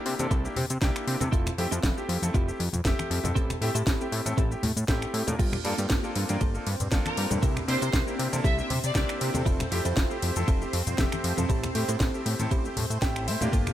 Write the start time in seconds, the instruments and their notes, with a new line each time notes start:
Already playing: grand piano A#3 D4 E4 G4
0.06 analog synth bass C3, open hi-hat, high bongo
0.19 analog synth bass C3, grand piano A#3 D4 E4 A4, closed hi-hat, high conga, cabasa
0.31 analog synth bass C2, clean electric guitar C4 E4 G4 A4, kick, closed hi-hat, cabasa
0.44 grand piano A#3 D4 E4 G4, cabasa
0.56 analog synth bass C3, muted clean electric guitar stroke, open hi-hat, low conga
0.70 analog synth bass C3, closed hi-hat, cabasa
0.81 analog synth bass C2, grand piano A#3 D4 E4 G4, kick, snare, closed hi-hat, cabasa
0.96 finger snap, cabasa
1.07 analog synth bass C3, open hi-hat
1.20 analog synth bass C3, grand piano A3 C4 E4 A4, muted clean electric guitar stroke, closed hi-hat, high conga, low conga, cabasa
1.32 analog synth bass F1, clean electric guitar C4 E4 F4 A4, kick, closed hi-hat, cabasa
1.46 finger snap, high bongo, low conga, cabasa
1.58 analog synth bass F2, grand piano A3 C4 E4 G4, open hi-hat
1.71 analog synth bass F2, clean electric guitar C4 E4 F4 A4, closed hi-hat, cabasa
1.83 analog synth bass F1, kick, snare, closed hi-hat, cabasa
1.97 grand piano A3 C4 E4 G4, high bongo, cabasa
2.09 analog synth bass F2, open hi-hat, high bongo
2.22 analog synth bass F2, grand piano A3 C4 E4 A4, closed hi-hat, high conga, cabasa
2.34 analog synth bass F1, clean electric guitar C4 E4 F4 G4, kick, closed hi-hat, cabasa
2.47 grand piano A3 C4 E4 G4, cabasa
2.60 analog synth bass F2, muted clean electric guitar stroke, open hi-hat
2.73 analog synth bass F2, closed hi-hat, low conga, cabasa
2.85 analog synth bass F1, grand piano A3 C4 G4 E5, kick, snare, closed hi-hat, cabasa
2.99 finger snap, high conga, cabasa
3.11 analog synth bass F2, open hi-hat
3.24 analog synth bass F2, grand piano A3 C4 E4 A4, muted clean electric guitar stroke, closed hi-hat, high conga, low conga, cabasa
3.35 analog synth bass A1, clean electric guitar C4 E4 G4 A4, kick, closed hi-hat, cabasa
3.50 finger snap, high bongo, low conga, cabasa
3.61 analog synth bass A2, grand piano A3 C4 E4 G4, open hi-hat
3.75 analog synth bass A2, clean electric guitar C4 E4 G4 A4, closed hi-hat, cabasa
3.87 analog synth bass A1, kick, snare, closed hi-hat, cabasa
4.00 grand piano A3 C4 E4 G4, high bongo, cabasa
4.12 analog synth bass A2, open hi-hat, high bongo
4.25 analog synth bass A2, grand piano A3 C4 E4 A4, closed hi-hat, high conga, cabasa
4.37 analog synth bass A1, clean electric guitar C4 E4 G4 A4, kick, closed hi-hat, cabasa
4.51 grand piano A3 C4 E4 G4, cabasa
4.63 analog synth bass A2, muted clean electric guitar stroke, open hi-hat, low conga
4.77 analog synth bass A2, closed hi-hat, cabasa
4.88 analog synth bass A1, grand piano A3 C4 E4 G4, kick, snare, closed hi-hat, cabasa
5.02 finger snap, cabasa
5.14 analog synth bass A2, open hi-hat
5.27 analog synth bass A2, grand piano A#3 D4 F4 A#4, muted clean electric guitar stroke, closed hi-hat, high bongo, high conga, low conga, cabasa
5.39 analog synth bass G1, clean electric guitar A#3 F4 G4 A4, analog synth pad C4 C5, kick, closed hi-hat, ride, crash, cabasa
5.53 finger snap, high bongo, low conga, cabasa
5.64 analog synth bass G2, grand piano A#3 D4 F4 A4, open hi-hat, ride
5.78 analog synth bass G2, clean electric guitar A#3 F4 G4 A4, closed hi-hat, cabasa
5.90 analog synth bass G1, kick, snare, closed hi-hat, ride, cabasa
6.03 grand piano A#3 D4 F4 A4, high bongo, cabasa
6.16 analog synth bass G2, open hi-hat, ride, high bongo
6.29 analog synth bass G2, grand piano A#3 D4 F4 A#4, closed hi-hat, high conga, cabasa
6.41 analog synth bass G1, clean electric guitar A#3 F4 G4 A4, kick, closed hi-hat, ride, cabasa
6.54 grand piano A#3 D4 F4 A4, cabasa
6.66 analog synth bass G2, muted clean electric guitar stroke, open hi-hat, ride
6.80 analog synth bass G2, closed hi-hat, low conga, cabasa
6.91 analog synth bass G1, grand piano A#3 D4 F4 A4, kick, snare, closed hi-hat, ride, cabasa
7.06 violin section A#4, finger snap, high conga, cabasa
7.17 analog synth bass G2, open hi-hat, ride
7.31 analog synth bass G2, grand piano A#3 D4 E4 A4, muted clean electric guitar stroke, closed hi-hat, high conga, low conga, cabasa
7.42 analog synth bass C2, clean electric guitar C4 E4 G4 A#4, kick, closed hi-hat, ride, cabasa
7.56 finger snap, high bongo, low conga, cabasa
7.68 analog synth bass C3, grand piano A#3 D4 E4 G4, violin section C5, open hi-hat, ride
7.81 analog synth bass C3, clean electric guitar C4 E4 G4 A#4, violin section C5, closed hi-hat, cabasa
7.93 analog synth bass C2, kick, snare, closed hi-hat, ride, cabasa
8.07 grand piano A#3 D4 E4 G4, high bongo, cabasa
8.19 analog synth bass C3, open hi-hat, ride, high bongo
8.32 analog synth bass C3, grand piano A#3 D4 E4 A4, closed hi-hat, high conga, cabasa
8.44 analog synth bass C2, clean electric guitar C4 E4 G4 A4, violin section E5, kick, closed hi-hat, ride, cabasa
8.58 grand piano A#3 D4 E4 G4, violin section E5, cabasa
8.70 analog synth bass C3, muted clean electric guitar stroke, open hi-hat, ride, low conga
8.84 analog synth bass C3, violin section D5, closed hi-hat, cabasa
8.95 analog synth bass C2, grand piano A#3 D4 E4 G4, violin section D5, kick, snare, closed hi-hat, ride, cabasa
9.09 finger snap, cabasa
9.21 analog synth bass C3, open hi-hat, ride
9.34 analog synth bass C3, grand piano A3 C4 E4 A4, muted clean electric guitar stroke, closed hi-hat, high conga, low conga, cabasa
9.46 analog synth bass F1, clean electric guitar C4 E4 F4 A4, kick, closed hi-hat, ride, cabasa
9.60 finger snap, high bongo, low conga, cabasa
9.71 analog synth bass F2, grand piano A3 C4 E4 G4, open hi-hat, ride
9.85 analog synth bass F2, clean electric guitar C4 E4 F4 A4, closed hi-hat, cabasa
9.97 analog synth bass F1, kick, snare, closed hi-hat, ride, cabasa
10.10 grand piano A3 C4 E4 G4, high bongo, cabasa
10.22 analog synth bass F2, open hi-hat, ride, high bongo
10.36 analog synth bass F2, grand piano A3 C4 E4 A4, closed hi-hat, high conga, cabasa
10.47 analog synth bass F1, clean electric guitar C4 E4 F4 A4, kick, closed hi-hat, ride, cabasa
10.61 grand piano A3 C4 E4 G4, cabasa
10.73 analog synth bass F2, muted clean electric guitar stroke, open hi-hat, ride
10.87 analog synth bass F2, closed hi-hat, low conga, cabasa
10.98 analog synth bass F1, grand piano A3 C4 G4 E5, kick, snare, closed hi-hat, ride, cabasa
11.12 finger snap, high conga, cabasa
11.24 analog synth bass F2, open hi-hat, ride
11.37 analog synth bass F2, grand piano A3 C4 E4 A4, muted clean electric guitar stroke, closed hi-hat, high conga, low conga, cabasa
11.49 analog synth bass A1, clean electric guitar C4 E4 G4 A4, kick, closed hi-hat, ride, cabasa
11.63 finger snap, high bongo, low conga, cabasa
11.75 analog synth bass A2, grand piano A3 C4 E4 G4, open hi-hat, ride
11.88 analog synth bass A2, clean electric guitar C4 E4 G4 A4, closed hi-hat, cabasa
12.00 analog synth bass A1, kick, snare, closed hi-hat, ride, cabasa
12.14 grand piano A3 C4 E4 G4, high bongo, cabasa
12.26 analog synth bass A2, open hi-hat, ride, high bongo
12.39 analog synth bass A2, grand piano A3 C4 E4 A4, closed hi-hat, high conga, cabasa
12.51 analog synth bass A1, clean electric guitar C4 E4 G4 C5, kick, closed hi-hat, ride, cabasa
12.65 grand piano A3 C4 E4 G4, cabasa
12.76 analog synth bass A2, muted clean electric guitar stroke, open hi-hat, ride, low conga
12.90 analog synth bass A2, closed hi-hat, cabasa
13.02 analog synth bass A1, grand piano A3 C4 E4 G4, clean electric guitar G5, kick, snare, closed hi-hat, ride, cabasa
13.16 finger snap, cabasa
13.27 analog synth bass A2, grand piano A3 C4 E4 C5, clean electric guitar E5, open hi-hat, ride
13.41 analog synth bass A2, grand piano A#3 D4 F4 G4, muted clean electric guitar stroke, closed hi-hat, high conga, low conga, cabasa
13.52 analog synth bass G1, clean electric guitar A#3 F4 G4 A4, analog synth pad D4 E5, kick, closed hi-hat, ride, cabasa
13.67 finger snap, high bongo, low conga, cabasa